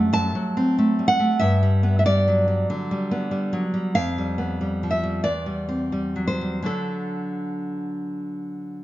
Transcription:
0.00 0.66 G3 medium
0.00 0.77 A3 medium
0.00 0.24 C4 medium
0.00 0.11 F#5 loud
0.13 0.35 F#2 medium
0.13 1.04 A5 loud
0.35 1.30 F#3 medium
0.57 1.40 C4 medium
0.79 1.18 A3 medium
0.99 1.41 G3 medium
1.08 1.38 F#5 loud
1.20 1.40 A3 medium
1.39 2.63 G2 medium
1.39 1.94 E5 loud
1.63 2.05 G3 medium
1.83 2.77 B3 medium
1.99 2.04 E5 medium
2.06 2.46 G3 medium
2.06 3.91 D5 loud
2.28 3.21 F#3 medium
2.48 2.90 G3 medium
2.70 3.64 D3 medium
2.91 3.30 G3 medium
3.11 3.95 B3 medium
3.31 3.73 G3 medium
3.53 3.95 F#3 medium
3.74 3.95 G3 medium
3.95 5.22 F2 medium
3.95 4.89 F5 loud
4.18 4.60 G3 medium
4.38 5.25 B3 medium
4.61 5.02 G3 medium
4.83 5.26 F3 soft
4.91 5.23 E5 medium
5.03 5.25 G3 medium
5.24 6.63 E2 medium
5.24 6.24 D5 medium
5.46 5.91 G3 soft
5.69 6.62 C4 medium
5.92 6.40 G3 medium
6.16 6.62 F#3 soft
6.27 6.65 C5 medium
6.41 6.65 G3 soft
6.63 8.84 D3 medium
6.63 8.84 F#3 soft
6.63 8.84 D4 medium
6.63 8.84 A4 medium

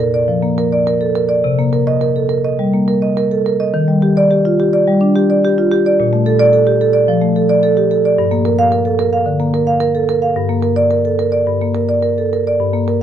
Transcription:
0.00 0.26 A#2 medium
0.00 0.24 A#4 medium
0.14 0.38 D5 medium
0.28 0.52 F3 medium
0.43 0.67 A#3 medium
0.58 0.81 A#4 medium
0.73 0.96 D5 medium
0.87 1.10 A#4 medium
1.01 1.16 A4 medium
1.15 1.39 A#4 medium
1.29 1.44 D5 medium
1.44 2.55 C3 medium
1.59 1.82 A#3 medium
1.73 1.96 A#4 medium
1.87 2.10 D#5 medium
2.01 2.24 A#4 medium
2.16 2.30 A4 soft
2.29 2.53 A#4 medium
2.44 2.67 D#5 medium
2.59 2.82 G3 medium
2.73 2.97 A#3 medium
2.88 3.11 A#4 medium
3.02 3.25 D#5 medium
3.17 3.40 A#4 medium
3.31 3.45 A4 medium
3.46 3.68 A#4 medium
3.60 3.74 D#5 medium
3.74 4.84 D#3 medium
3.88 4.11 G3 medium
4.02 4.25 G4 medium
4.17 4.39 D5 medium
4.31 4.53 G4 medium
4.45 4.59 F4 medium
4.60 4.82 G4 medium
4.73 4.96 D5 medium
4.87 5.10 G3 medium
5.01 5.24 D4 medium
5.15 5.38 G4 medium
5.30 5.52 D5 medium
5.45 5.67 G4 medium
5.58 5.72 F4 medium
5.71 5.94 G4 medium
5.86 6.00 D5 medium
6.00 7.05 A#2 medium
6.13 6.35 A3 medium
6.26 6.48 A4 medium
6.40 6.62 D5 medium
6.53 6.75 A4 medium
6.67 6.81 G4 medium
6.81 7.03 A4 medium
6.93 7.16 D5 medium
7.08 7.30 F3 medium
7.22 7.44 A3 medium
7.36 7.58 A4 medium
7.49 7.72 D5 medium
7.63 7.85 A4 medium
7.77 7.91 G4 medium
7.91 8.13 A4 medium
8.05 8.18 D5 medium
8.18 9.23 G2 medium
8.31 8.53 A#3 medium
8.45 8.67 A#4 medium
8.59 8.80 F5 medium
8.72 8.93 A#4 medium
8.85 8.99 A4 medium
8.99 9.21 A#4 medium
9.13 9.34 F5 medium
9.26 9.48 D3 medium
9.40 9.62 A#3 medium
9.54 9.76 A#4 medium
9.67 9.89 F5 medium
9.80 10.03 A#4 medium
9.95 10.09 A4 medium
10.09 10.31 A#4 medium
10.22 10.36 F5 medium
10.36 11.43 G2 medium
10.49 10.71 A#3 medium
10.63 10.85 A#4 medium
10.76 10.99 D5 medium
10.91 11.13 A#4 medium
11.05 11.19 A4 soft
11.19 11.41 A#4 medium
11.32 11.55 D5 medium
11.47 12.56 G2 medium
11.61 11.84 A#3 medium
11.75 11.97 A#4 medium
11.89 12.12 D5 medium
12.03 12.26 A#4 medium
12.18 12.32 A4 medium
12.33 12.55 A#4 medium
12.47 12.60 D5 medium
12.60 13.03 G2 medium
12.74 12.96 A#3 medium
12.88 13.03 A#4 medium

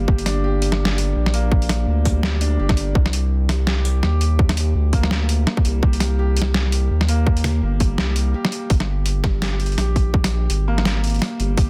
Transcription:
0.00 2.05 G3 medium
0.00 1.34 A#3 loud
0.00 0.26 D4 loud
0.00 0.08 G4 loud
0.08 1.15 G1 medium
0.08 0.24 G4 medium
0.08 kick loud
0.18 closed hi-hat soft
0.26 0.43 D4 loud
0.26 snare medium
0.26 closed hi-hat medium
0.44 0.61 G4 loud
0.62 closed hi-hat medium
0.72 snare medium
0.85 snare loud
0.98 closed hi-hat medium
1.16 1.86 A#1 loud
1.26 snare medium
1.34 1.51 A#3 loud
1.34 closed hi-hat medium
1.52 kick loud
1.62 closed hi-hat soft
1.69 snare medium
1.69 closed hi-hat medium
1.87 2.58 D2 loud
2.05 2.22 G3 medium
2.05 kick medium
2.05 closed hi-hat medium
2.23 2.40 G4 medium
2.23 snare loud
2.23 snare medium
2.41 2.59 D4 loud
2.41 closed hi-hat medium
2.59 2.94 G1 loud
2.59 2.77 G4 loud
2.69 kick loud
2.69 snare medium
2.77 closed hi-hat medium
2.95 4.02 C2 loud
2.95 kick loud
3.06 snare medium
3.13 closed hi-hat medium
3.49 3.66 G3 medium
3.49 snare medium
3.49 closed hi-hat medium
3.67 3.83 G4 medium
3.67 snare loud
3.85 4.02 G4 medium
3.85 closed hi-hat medium
4.03 4.74 D#2 medium
4.03 4.20 G4 loud
4.03 snare medium
4.21 closed hi-hat medium
4.39 kick loud
4.49 snare medium
4.49 closed hi-hat soft
4.57 closed hi-hat medium
4.75 5.46 D2 loud
4.93 5.10 A#3 loud
4.93 kick medium
4.93 closed hi-hat medium
5.03 snare medium
5.11 snare loud
5.29 closed hi-hat medium
5.47 snare medium
5.57 kick loud
5.65 5.82 C2 loud
5.65 5.82 G3 medium
5.65 closed hi-hat medium
5.83 6.89 C2 loud
5.83 5.99 G4 medium
5.83 kick loud
5.93 closed hi-hat soft
6.00 6.17 G4 medium
6.00 snare medium
6.00 closed hi-hat medium
6.19 6.36 G4 loud
6.37 closed hi-hat medium
6.42 snare medium
6.54 snare loud
6.72 closed hi-hat medium
6.91 7.61 D#2 loud
7.01 snare medium
7.08 7.26 A#3 loud
7.08 closed hi-hat medium
7.27 kick loud
7.37 closed hi-hat soft
7.44 snare medium
7.44 closed hi-hat medium
7.62 7.97 G1 loud
7.80 7.97 G3 medium
7.80 kick medium
7.80 closed hi-hat medium
7.98 8.34 C2 loud
7.98 8.15 G4 medium
7.98 snare loud
7.98 snare medium
8.16 8.33 G4 medium
8.16 closed hi-hat medium
8.34 8.51 G4 loud
8.45 snare medium
8.52 closed hi-hat medium
8.70 9.77 G1 medium
8.70 kick loud
8.70 closed hi-hat medium
8.80 snare medium
9.06 closed hi-hat medium
9.24 9.41 G3 medium
9.24 kick loud
9.24 snare medium
9.42 9.58 G4 medium
9.42 snare loud
9.42 closed hi-hat medium
9.60 9.76 G4 medium
9.60 closed hi-hat soft
9.66 closed hi-hat soft
9.72 closed hi-hat soft
9.78 10.49 A#1 loud
9.78 9.95 G4 loud
9.78 snare medium
9.78 closed hi-hat medium
9.96 kick medium
9.96 closed hi-hat soft
10.14 kick loud
10.24 snare medium
10.24 closed hi-hat medium
10.50 11.20 G#1 loud
10.50 closed hi-hat medium
10.68 10.85 A#3 loud
10.78 snare medium
10.85 snare loud
10.85 closed hi-hat medium
11.04 closed hi-hat soft
11.07 closed hi-hat soft
11.10 closed hi-hat soft
11.14 closed hi-hat soft
11.16 closed hi-hat soft
11.19 snare medium
11.19 closed hi-hat soft
11.22 closed hi-hat medium
11.39 11.56 G1 loud
11.39 11.56 G3 medium
11.39 closed hi-hat soft
11.57 11.70 G1 medium
11.57 11.70 G4 medium
11.57 kick loud
11.57 closed hi-hat medium

